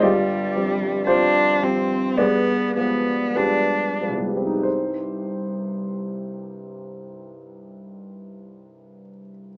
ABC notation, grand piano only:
X:1
M:4/4
L:1/8
Q:1/4=49
K:Cm
V:1 name="Grand piano"
[FGd]2 [FGc]2 [A=Bd]2 [GAB]2 | [C,,G,,G,CEGc]8 |]
V:2 name="Grand piano" clef=bass
[G,,,G,,] [F,G,C] [F,G,C] [F,G,C] G,, [F,A,=B,] [F,A,B,] [F,A,B,] | z8 |]